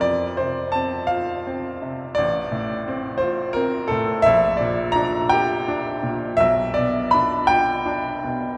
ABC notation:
X:1
M:12/8
L:1/8
Q:3/8=56
K:F
V:1 name="Upright piano"
d c a f3 d3 c B A | e d b g3 e d =b g3 |]
V:2 name="Upright piano" clef=bass
F,, C, C F C C, A,,, A,, C F C A,, | B,,, B,, D G D B,, =B,,, =B,, D F D B,, |]